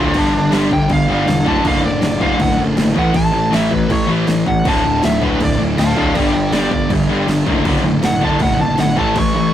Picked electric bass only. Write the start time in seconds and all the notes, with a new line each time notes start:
Already playing: D1
0.15 G1
0.35 G1
0.53 G1
0.71 G1
0.90 G1
1.09 G1
1.27 E1
1.46 F#1
1.65 F#1
1.83 F#1
2.02 F#1
2.40 F#1
2.57 F#1
2.76 F#1
2.96 A1
3.14 A1
3.33 A1
3.53 A1
3.72 A1
3.90 A1
4.09 A1
4.28 A1
4.46 A1
4.66 D1
4.85 D1
5.03 D1
5.40 D1
5.60 D1
5.77 D1
5.97 D1
6.16 G1
6.34 G1
6.52 G1
6.71 G1
6.90 G1
7.10 G1
7.27 G1
7.47 F#1
7.65 F#1
7.84 F#1
8.04 F#1
8.41 F#1
8.60 F#1
8.78 G1
8.96 A1
9.16 A1
9.36 A1